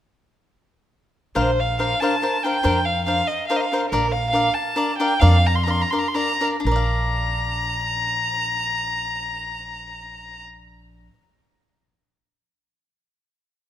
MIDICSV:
0, 0, Header, 1, 4, 480
1, 0, Start_track
1, 0, Key_signature, -2, "major"
1, 0, Tempo, 429492
1, 1522, Time_signature, 3, 2, 24, 8
1, 5341, Tempo, 448096
1, 6301, Tempo, 494641
1, 8701, Tempo, 507614
1, 13946, End_track
2, 0, Start_track
2, 0, Title_t, "Violin"
2, 0, Program_c, 0, 40
2, 1522, Note_on_c, 0, 72, 58
2, 1784, Note_on_c, 0, 77, 65
2, 1800, Note_off_c, 0, 72, 0
2, 2001, Note_off_c, 0, 77, 0
2, 2008, Note_on_c, 0, 77, 77
2, 2237, Note_on_c, 0, 81, 71
2, 2254, Note_off_c, 0, 77, 0
2, 2714, Note_on_c, 0, 79, 73
2, 2731, Note_off_c, 0, 81, 0
2, 3184, Note_on_c, 0, 77, 64
2, 3201, Note_off_c, 0, 79, 0
2, 3391, Note_off_c, 0, 77, 0
2, 3398, Note_on_c, 0, 77, 75
2, 3659, Note_on_c, 0, 75, 65
2, 3676, Note_off_c, 0, 77, 0
2, 3875, Note_off_c, 0, 75, 0
2, 3882, Note_on_c, 0, 77, 65
2, 3982, Note_on_c, 0, 75, 55
2, 3999, Note_off_c, 0, 77, 0
2, 4030, Note_on_c, 0, 77, 66
2, 4047, Note_off_c, 0, 75, 0
2, 4254, Note_off_c, 0, 77, 0
2, 4350, Note_on_c, 0, 70, 68
2, 4600, Note_on_c, 0, 77, 81
2, 4617, Note_off_c, 0, 70, 0
2, 4799, Note_off_c, 0, 77, 0
2, 4806, Note_on_c, 0, 77, 78
2, 5075, Note_on_c, 0, 81, 70
2, 5092, Note_off_c, 0, 77, 0
2, 5549, Note_off_c, 0, 81, 0
2, 5556, Note_on_c, 0, 79, 76
2, 5784, Note_on_c, 0, 77, 88
2, 5800, Note_off_c, 0, 79, 0
2, 6075, Note_on_c, 0, 82, 68
2, 6091, Note_off_c, 0, 77, 0
2, 6166, Note_on_c, 0, 84, 55
2, 6182, Note_off_c, 0, 82, 0
2, 6257, Note_on_c, 0, 82, 64
2, 6273, Note_off_c, 0, 84, 0
2, 6330, Note_on_c, 0, 84, 66
2, 6345, Note_off_c, 0, 82, 0
2, 6436, Note_on_c, 0, 82, 70
2, 6450, Note_off_c, 0, 84, 0
2, 6525, Note_on_c, 0, 84, 52
2, 6540, Note_off_c, 0, 82, 0
2, 6603, Note_on_c, 0, 82, 59
2, 6617, Note_off_c, 0, 84, 0
2, 6691, Note_on_c, 0, 84, 59
2, 6705, Note_off_c, 0, 82, 0
2, 6752, Note_on_c, 0, 82, 83
2, 6767, Note_off_c, 0, 84, 0
2, 7024, Note_off_c, 0, 82, 0
2, 7271, Note_on_c, 0, 82, 72
2, 10867, Note_off_c, 0, 82, 0
2, 13946, End_track
3, 0, Start_track
3, 0, Title_t, "Cavaquinho"
3, 0, Program_c, 1, 24
3, 1509, Note_on_c, 1, 62, 42
3, 1511, Note_on_c, 1, 70, 44
3, 1517, Note_on_c, 1, 72, 44
3, 1519, Note_on_c, 1, 77, 63
3, 1673, Note_off_c, 1, 62, 0
3, 1674, Note_off_c, 1, 70, 0
3, 1677, Note_off_c, 1, 72, 0
3, 1679, Note_off_c, 1, 77, 0
3, 1999, Note_on_c, 1, 62, 38
3, 2002, Note_on_c, 1, 70, 36
3, 2008, Note_on_c, 1, 72, 34
3, 2008, Note_on_c, 1, 77, 45
3, 2158, Note_off_c, 1, 62, 0
3, 2160, Note_off_c, 1, 70, 0
3, 2163, Note_off_c, 1, 72, 0
3, 2163, Note_off_c, 1, 77, 0
3, 2253, Note_on_c, 1, 62, 45
3, 2260, Note_on_c, 1, 70, 49
3, 2267, Note_on_c, 1, 72, 43
3, 2275, Note_on_c, 1, 77, 47
3, 2392, Note_off_c, 1, 62, 0
3, 2396, Note_off_c, 1, 70, 0
3, 2399, Note_off_c, 1, 72, 0
3, 2403, Note_off_c, 1, 77, 0
3, 2480, Note_on_c, 1, 62, 40
3, 2489, Note_on_c, 1, 70, 49
3, 2495, Note_on_c, 1, 77, 52
3, 2496, Note_on_c, 1, 72, 46
3, 2640, Note_off_c, 1, 62, 0
3, 2645, Note_off_c, 1, 70, 0
3, 2648, Note_off_c, 1, 72, 0
3, 2648, Note_off_c, 1, 77, 0
3, 2729, Note_on_c, 1, 62, 49
3, 2733, Note_on_c, 1, 70, 49
3, 2744, Note_on_c, 1, 72, 42
3, 2748, Note_on_c, 1, 77, 43
3, 2870, Note_off_c, 1, 62, 0
3, 2873, Note_off_c, 1, 70, 0
3, 2878, Note_off_c, 1, 72, 0
3, 2880, Note_off_c, 1, 77, 0
3, 2941, Note_on_c, 1, 62, 53
3, 2949, Note_on_c, 1, 72, 63
3, 2952, Note_on_c, 1, 70, 65
3, 2956, Note_on_c, 1, 77, 48
3, 3110, Note_off_c, 1, 62, 0
3, 3114, Note_off_c, 1, 72, 0
3, 3116, Note_off_c, 1, 70, 0
3, 3118, Note_off_c, 1, 77, 0
3, 3425, Note_on_c, 1, 62, 39
3, 3435, Note_on_c, 1, 70, 30
3, 3439, Note_on_c, 1, 72, 45
3, 3442, Note_on_c, 1, 77, 49
3, 3588, Note_off_c, 1, 62, 0
3, 3593, Note_off_c, 1, 70, 0
3, 3595, Note_off_c, 1, 72, 0
3, 3597, Note_off_c, 1, 77, 0
3, 3908, Note_on_c, 1, 62, 52
3, 3914, Note_on_c, 1, 70, 43
3, 3918, Note_on_c, 1, 72, 55
3, 3921, Note_on_c, 1, 77, 59
3, 4065, Note_off_c, 1, 62, 0
3, 4068, Note_off_c, 1, 70, 0
3, 4070, Note_off_c, 1, 72, 0
3, 4071, Note_off_c, 1, 77, 0
3, 4154, Note_on_c, 1, 62, 40
3, 4166, Note_on_c, 1, 70, 49
3, 4172, Note_on_c, 1, 72, 44
3, 4175, Note_on_c, 1, 77, 49
3, 4292, Note_off_c, 1, 62, 0
3, 4298, Note_off_c, 1, 70, 0
3, 4301, Note_off_c, 1, 72, 0
3, 4302, Note_off_c, 1, 77, 0
3, 4383, Note_on_c, 1, 62, 55
3, 4390, Note_on_c, 1, 70, 60
3, 4392, Note_on_c, 1, 74, 61
3, 4400, Note_on_c, 1, 77, 59
3, 4538, Note_off_c, 1, 62, 0
3, 4541, Note_off_c, 1, 70, 0
3, 4542, Note_off_c, 1, 74, 0
3, 4546, Note_off_c, 1, 77, 0
3, 4837, Note_on_c, 1, 62, 43
3, 4845, Note_on_c, 1, 70, 39
3, 4852, Note_on_c, 1, 74, 53
3, 4864, Note_on_c, 1, 77, 47
3, 5003, Note_off_c, 1, 62, 0
3, 5007, Note_off_c, 1, 70, 0
3, 5011, Note_off_c, 1, 74, 0
3, 5016, Note_off_c, 1, 77, 0
3, 5319, Note_on_c, 1, 62, 51
3, 5320, Note_on_c, 1, 70, 47
3, 5333, Note_on_c, 1, 74, 55
3, 5338, Note_on_c, 1, 77, 47
3, 5482, Note_off_c, 1, 62, 0
3, 5483, Note_off_c, 1, 70, 0
3, 5489, Note_off_c, 1, 74, 0
3, 5492, Note_off_c, 1, 77, 0
3, 5573, Note_on_c, 1, 62, 47
3, 5578, Note_on_c, 1, 70, 54
3, 5582, Note_on_c, 1, 74, 56
3, 5588, Note_on_c, 1, 77, 48
3, 5714, Note_off_c, 1, 62, 0
3, 5716, Note_off_c, 1, 70, 0
3, 5718, Note_off_c, 1, 74, 0
3, 5722, Note_off_c, 1, 77, 0
3, 5803, Note_on_c, 1, 62, 44
3, 5807, Note_on_c, 1, 74, 59
3, 5808, Note_on_c, 1, 70, 51
3, 5811, Note_on_c, 1, 77, 64
3, 5964, Note_off_c, 1, 62, 0
3, 5966, Note_off_c, 1, 70, 0
3, 5966, Note_off_c, 1, 74, 0
3, 5968, Note_off_c, 1, 77, 0
3, 6284, Note_on_c, 1, 62, 37
3, 6296, Note_on_c, 1, 70, 43
3, 6301, Note_on_c, 1, 74, 37
3, 6305, Note_on_c, 1, 77, 43
3, 6440, Note_off_c, 1, 62, 0
3, 6445, Note_off_c, 1, 70, 0
3, 6448, Note_off_c, 1, 74, 0
3, 6450, Note_off_c, 1, 77, 0
3, 6542, Note_on_c, 1, 62, 36
3, 6546, Note_on_c, 1, 70, 40
3, 6551, Note_on_c, 1, 77, 43
3, 6553, Note_on_c, 1, 74, 41
3, 6673, Note_off_c, 1, 62, 0
3, 6675, Note_off_c, 1, 70, 0
3, 6677, Note_off_c, 1, 77, 0
3, 6679, Note_off_c, 1, 74, 0
3, 6755, Note_on_c, 1, 62, 45
3, 6762, Note_on_c, 1, 70, 40
3, 6766, Note_on_c, 1, 74, 55
3, 6768, Note_on_c, 1, 77, 50
3, 6914, Note_off_c, 1, 62, 0
3, 6918, Note_off_c, 1, 70, 0
3, 6920, Note_off_c, 1, 74, 0
3, 6921, Note_off_c, 1, 77, 0
3, 7009, Note_on_c, 1, 62, 46
3, 7016, Note_on_c, 1, 70, 39
3, 7016, Note_on_c, 1, 74, 48
3, 7027, Note_on_c, 1, 77, 45
3, 7149, Note_off_c, 1, 62, 0
3, 7153, Note_off_c, 1, 70, 0
3, 7153, Note_off_c, 1, 74, 0
3, 7159, Note_off_c, 1, 77, 0
3, 7197, Note_on_c, 1, 62, 57
3, 7262, Note_on_c, 1, 70, 61
3, 7309, Note_on_c, 1, 74, 52
3, 7351, Note_on_c, 1, 77, 58
3, 11462, Note_off_c, 1, 62, 0
3, 11524, Note_off_c, 1, 70, 0
3, 11571, Note_off_c, 1, 74, 0
3, 11606, Note_off_c, 1, 77, 0
3, 13946, End_track
4, 0, Start_track
4, 0, Title_t, "Upright bass"
4, 0, Program_c, 2, 32
4, 1520, Note_on_c, 2, 34, 73
4, 2148, Note_off_c, 2, 34, 0
4, 2959, Note_on_c, 2, 41, 66
4, 3578, Note_off_c, 2, 41, 0
4, 4382, Note_on_c, 2, 34, 75
4, 5003, Note_off_c, 2, 34, 0
4, 5815, Note_on_c, 2, 41, 91
4, 6447, Note_off_c, 2, 41, 0
4, 7245, Note_on_c, 2, 34, 64
4, 11470, Note_off_c, 2, 34, 0
4, 13946, End_track
0, 0, End_of_file